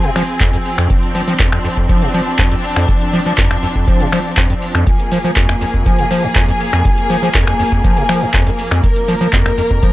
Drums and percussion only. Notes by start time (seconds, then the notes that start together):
0.04 closed hi-hat
0.16 finger snap, open hi-hat
0.40 kick, clap, closed hi-hat
0.53 closed hi-hat
0.65 open hi-hat
0.78 finger snap, closed hi-hat
0.90 kick, closed hi-hat
1.03 closed hi-hat
1.15 open hi-hat
1.39 kick, clap, closed hi-hat
1.52 finger snap, closed hi-hat
1.64 open hi-hat
1.77 kick, closed hi-hat
1.89 kick, closed hi-hat
2.02 closed hi-hat
2.14 open hi-hat
2.39 kick, clap, closed hi-hat
2.52 closed hi-hat
2.64 open hi-hat
2.76 finger snap
2.88 kick, closed hi-hat
3.01 closed hi-hat
3.13 open hi-hat
3.38 kick, clap, closed hi-hat
3.51 finger snap, closed hi-hat
3.63 open hi-hat
3.76 kick, closed hi-hat
3.88 kick, closed hi-hat
4.00 closed hi-hat
4.12 finger snap, open hi-hat
4.37 kick, clap, closed hi-hat
4.50 closed hi-hat
4.62 open hi-hat
4.75 finger snap, closed hi-hat
4.87 kick, closed hi-hat, shaker
5.00 closed hi-hat
5.12 open hi-hat, shaker
5.24 shaker
5.36 kick, clap, closed hi-hat, shaker
5.49 finger snap, closed hi-hat
5.61 open hi-hat, shaker
5.74 kick, closed hi-hat, shaker
5.86 kick, closed hi-hat, shaker
5.99 closed hi-hat, shaker
6.11 open hi-hat, shaker
6.24 shaker
6.35 kick, clap, closed hi-hat, shaker
6.48 closed hi-hat, shaker
6.60 open hi-hat, shaker
6.73 finger snap, closed hi-hat, shaker
6.85 kick, closed hi-hat, shaker
6.98 closed hi-hat
7.10 open hi-hat, shaker
7.23 shaker
7.34 kick, clap, closed hi-hat, shaker
7.47 finger snap, closed hi-hat
7.59 open hi-hat, shaker
7.72 kick, closed hi-hat, shaker
7.84 kick, closed hi-hat, shaker
7.97 closed hi-hat, shaker
8.09 finger snap, open hi-hat, shaker
8.22 shaker
8.34 kick, clap, closed hi-hat, shaker
8.47 closed hi-hat, shaker
8.59 open hi-hat, shaker
8.71 finger snap, closed hi-hat, shaker
8.83 kick, closed hi-hat, shaker
8.96 closed hi-hat
9.08 open hi-hat, shaker
9.21 shaker
9.33 kick, clap, closed hi-hat, shaker
9.46 finger snap, closed hi-hat
9.58 open hi-hat, shaker
9.71 kick, closed hi-hat, shaker
9.83 kick, closed hi-hat, shaker